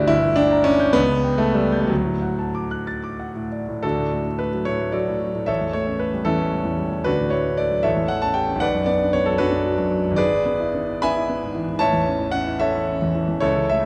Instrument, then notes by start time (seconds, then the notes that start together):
grand piano
Already playing: G1 D2 D4 E4 F#4 G4 B4 D5 G5 B5 D6 G6 B6
0.08 G1 E4
0.23 D2
0.36 D4 G5
0.51 A#5
0.64 C#4 D6
0.80 G6
0.93 C#2 B3
1.09 C#3
1.24 G5
1.38 A3 A5
1.54 G3 E6
1.72 G6
1.80 G3
1.87 D2 F#3
2.05 A2
2.22 F#5
2.39 A5
2.55 D6
2.71 F#6
2.87 A6
3.04 D6
3.19 F#5
3.35 A2
3.52 D5
3.69 A2
3.83 D2 D4 F#4 A4
3.98 A2
4.13 A3
4.27 D4
4.39 A3 B4
4.54 F#3
4.65 A2 C#5
4.80 A3
4.92 F#3 F#4 A4 D5
5.08 A2
5.22 F#3
5.34 A2
5.46 A1 A4 C#5 E5
5.61 E2
5.73 A3 C#5
5.87 C#4
5.99 A3 B4
6.13 G3
6.25 E2 C#4 E4 A4
6.39 A3
6.52 G3
6.65 E2
6.79 G3
6.92 E2
7.04 D2 D4 F#4 B4
7.19 A2
7.30 A3 C#5
7.45 D4
7.57 A3 D5
7.71 F#3
7.83 A1 A4 C#5 E5
7.97 E2
8.08 A3 F#5
8.22 C#4 A5
8.34 G4 G5
8.48 C#4
8.55 B1
8.60 B4 D5 F#5
8.75 F#2
8.86 B3 D5
9.00 D4
9.13 B3 C#5
9.26 F#3 A4
9.38 F#2 D4 F#4 B4
9.52 B3
9.66 F#3
9.78 F#2
9.92 F#3
10.05 F#2
10.11 G#1
10.16 G#4 B4 D5
10.31 G#2
10.46 B3
10.60 E4
10.75 B3
10.89 E4
11.02 B3 E5 G#5 B5
11.17 E4
11.30 B3
11.43 G#2
11.55 E3
11.68 G#2
11.79 A1 C#5 E5 A5
11.93 E2
12.06 C#4
12.19 E4
12.31 C#4 F#5
12.47 E4
12.59 C#4 A4 C#5 E5
12.75 E4
12.88 C#4
13.02 E2
13.15 E3
13.28 E2
13.40 C#2 E4 A4 C#5
13.56 C#3
13.69 A3 E5